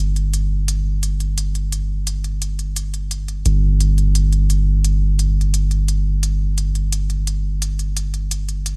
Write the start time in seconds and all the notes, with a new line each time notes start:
Already playing: G1
0.16 closed hi-hat
0.34 closed hi-hat
0.68 closed hi-hat
1.03 closed hi-hat
1.20 closed hi-hat
1.38 closed hi-hat
1.55 closed hi-hat
1.72 closed hi-hat
2.07 closed hi-hat
2.24 closed hi-hat
2.42 closed hi-hat
2.59 closed hi-hat
2.76 closed hi-hat
2.94 closed hi-hat
3.11 closed hi-hat
3.28 closed hi-hat
3.46 G1, closed hi-hat
3.80 closed hi-hat
3.98 closed hi-hat
4.15 closed hi-hat
4.33 closed hi-hat
4.50 closed hi-hat
4.84 closed hi-hat
5.19 closed hi-hat
5.41 closed hi-hat
5.54 closed hi-hat
5.71 closed hi-hat
5.88 closed hi-hat
6.23 closed hi-hat
6.58 closed hi-hat
6.75 closed hi-hat
6.92 closed hi-hat
7.10 closed hi-hat
7.27 closed hi-hat
7.62 closed hi-hat
7.79 closed hi-hat
7.97 closed hi-hat
8.14 closed hi-hat
8.31 closed hi-hat
8.49 closed hi-hat
8.66 closed hi-hat